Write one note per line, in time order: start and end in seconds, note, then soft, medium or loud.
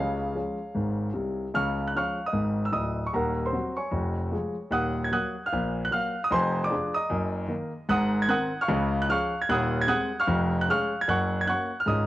0.00 0.29 C#2 medium
0.00 0.29 C#3 medium
0.00 1.36 G#4 medium
0.00 1.36 C#5 medium
0.00 1.39 F5 medium
0.35 0.57 F3 soft
0.35 0.57 G#3 soft
0.35 0.58 C#4 soft
0.75 1.09 G#1 medium
0.75 1.09 G#2 medium
1.13 1.46 C2 medium
1.13 1.46 C3 medium
1.54 1.88 C#2 medium
1.54 1.88 C#3 medium
1.54 1.85 F5 medium
1.54 1.85 C#6 medium
1.54 1.86 F6 medium
1.87 1.95 F#6 medium
1.96 2.17 F3 soft
1.96 2.17 G#3 soft
1.96 2.18 C#4 soft
1.96 2.25 F5 medium
1.96 2.25 C#6 medium
1.96 2.27 F6 medium
2.26 2.64 D#5 medium
2.26 2.66 D#6 medium
2.33 2.67 G#1 medium
2.33 2.67 G#2 medium
2.65 2.73 E6 medium
2.72 3.05 D1 medium
2.72 3.04 D2 medium
2.72 3.03 D#5 medium
2.72 3.05 D#6 medium
3.07 3.14 C#6 medium
3.13 3.47 D#1 medium
3.13 3.47 D#2 medium
3.13 3.44 A#4 medium
3.13 3.44 F#5 medium
3.13 3.45 A#5 medium
3.46 3.75 C5 soft
3.46 3.77 C6 medium
3.52 3.74 F#3 soft
3.52 3.74 C4 soft
3.52 3.75 F#4 medium
3.77 4.68 C#5 medium
3.77 4.69 G#5 medium
3.77 4.72 C#6 medium
3.91 4.26 F1 medium
3.91 4.26 F2 medium
4.32 4.54 F3 soft
4.32 4.54 G#3 soft
4.32 4.54 G#4 soft
4.71 5.05 D#1 medium
4.71 5.05 D#2 medium
4.71 5.02 F#5 medium
4.71 5.02 D#6 medium
4.71 5.04 F#6 medium
5.04 5.12 G#6 medium
5.11 5.33 F#3 medium
5.11 5.33 A#3 soft
5.11 5.34 F#4 medium
5.11 5.42 F#5 medium
5.11 5.42 D#6 medium
5.11 5.44 F#6 medium
5.46 5.82 F5 medium
5.46 5.84 F6 medium
5.53 5.86 A#1 medium
5.53 5.86 A#2 medium
5.85 5.92 F#6 loud
5.91 6.13 F#3 medium
5.91 6.13 A#3 medium
5.91 6.14 F#4 medium
5.91 6.22 F5 medium
5.91 6.23 F6 medium
6.24 6.31 D#6 medium
6.31 6.64 F1 medium
6.31 6.64 F2 medium
6.31 6.62 C5 medium
6.31 6.61 G#5 medium
6.31 6.63 C6 loud
6.64 6.93 D5 medium
6.64 6.95 D6 medium
6.70 6.92 F3 medium
6.70 6.93 D4 medium
6.70 6.93 G#4 medium
6.95 7.86 D#5 medium
6.95 7.86 A#5 medium
6.95 7.89 D#6 medium
7.10 7.44 F#1 medium
7.10 7.44 F#2 medium
7.48 7.70 D#3 medium
7.48 7.71 A#3 medium
7.48 7.71 A#4 medium
7.89 8.23 G#1 medium
7.89 8.23 G#2 loud
7.89 8.20 F#5 medium
7.89 8.19 D#6 medium
7.89 8.21 F#6 loud
8.22 8.30 G#6 loud
8.28 8.50 D#3 medium
8.28 8.51 C4 medium
8.28 8.51 A#4 medium
8.28 8.59 F#5 medium
8.28 8.59 D#6 medium
8.28 8.61 F#6 loud
8.61 8.99 F5 medium
8.61 8.98 C#6 medium
8.61 9.01 F6 medium
8.68 9.02 C#2 loud
8.68 9.02 C#3 medium
9.02 9.09 F#6 loud
9.09 9.31 F3 medium
9.09 9.31 C#4 medium
9.09 9.31 G#4 medium
9.09 9.40 F5 medium
9.09 9.39 C#6 medium
9.09 9.41 F6 loud
9.42 9.49 G#6 medium
9.49 9.82 D#1 medium
9.49 9.82 D#2 loud
9.49 9.79 F#5 medium
9.49 9.79 D#6 medium
9.49 9.80 F#6 loud
9.81 9.89 G#6 loud
9.87 10.09 G#3 medium
9.87 10.10 C4 medium
9.87 10.10 G#4 medium
9.87 10.18 F#5 medium
9.87 10.18 D#6 medium
9.87 10.20 F#6 loud
10.20 10.57 F5 medium
10.20 10.57 C#6 medium
10.20 10.59 F6 loud
10.27 10.61 F1 medium
10.27 10.61 F2 loud
10.61 10.68 F#6 medium
10.69 10.90 G#3 medium
10.69 10.91 C#4 soft
10.69 10.91 G#4 medium
10.69 10.98 F5 medium
10.69 10.98 C#6 medium
10.69 11.00 F6 loud
11.01 11.08 G#6 loud
11.07 11.41 F#1 medium
11.07 11.41 F#2 medium
11.07 11.38 F#5 medium
11.07 11.38 C#6 medium
11.07 11.39 F#6 loud
11.41 11.48 G#6 medium
11.47 11.69 A#3 medium
11.47 11.69 C#4 soft
11.47 11.69 F#4 medium
11.47 11.77 F#5 medium
11.47 11.77 C#6 medium
11.47 11.79 F#6 medium
11.80 11.87 F6 medium
11.86 12.07 G#1 medium
11.86 12.07 G#2 medium
11.86 12.07 G#3 soft
11.86 12.07 C#4 soft
11.86 12.07 F4 soft
11.86 12.07 D#5 medium
11.86 12.07 D#6 medium